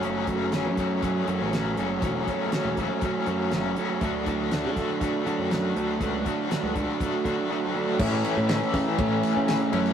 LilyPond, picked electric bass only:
\new Staff \with { instrumentName = "Picked electric bass" } { \clef bass \time 4/4 \key d \lydian \tempo 4 = 120 fis,,4~ fis,,16 fis,4~ fis,16 fis,16 a,,8. fis,,8 | e,,8 r8. e,,8 r8. fis,8 fis,,8 r8 | d,4~ d,16 d4~ d16 d16 fis,8. d,8 | cis,8 r8. cis,8 r8. d16 r4 r16 |
\key a \major a,8 r16 a,8 r16 cis16 r16 a,8 r16 cis8. fis,8 | }